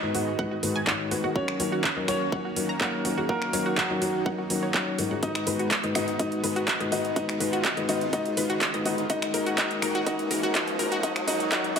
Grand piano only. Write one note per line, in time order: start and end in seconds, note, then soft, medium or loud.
0.00 1.26 D#4 medium
0.00 1.26 D#5 medium
1.36 1.99 C#4 medium
1.36 1.99 C#5 medium
2.08 2.71 C#4 medium
2.08 2.72 C#5 medium
2.81 3.24 A#3 medium
2.81 3.24 A#4 medium
3.29 3.73 A#3 medium
3.29 3.73 A#4 medium
3.78 5.13 F#3 medium
3.78 5.13 F#4 medium
5.23 5.86 D#4 medium
5.23 5.86 D#5 medium
5.95 6.18 D#4 medium
5.95 6.18 D#5 medium
6.20 6.83 D#4 medium
6.20 6.83 D#5 medium
6.92 7.14 D#4 medium
6.92 7.14 D#5 medium
7.16 7.80 D#4 medium
7.16 7.80 D#5 medium
7.89 8.11 D#4 medium
7.89 8.11 D#5 medium
8.13 8.76 D#4 medium
8.13 8.76 D#5 medium
8.86 9.08 D#4 medium
8.86 9.08 D#5 medium
9.10 9.56 D#4 medium
9.10 9.56 D#5 loud
9.58 10.05 D#4 medium
9.58 10.05 D#5 loud
10.07 10.53 D#4 medium
10.07 10.53 D#5 medium
10.55 11.02 D#4 medium
10.55 11.02 D#5 medium
11.03 11.26 D#4 medium
11.03 11.26 D#5 loud
11.28 11.50 D#4 medium
11.28 11.50 D#5 loud
11.52 11.74 D#4 medium
11.52 11.74 D#5 loud
11.76 11.79 D#4 medium
11.76 11.79 D#5 loud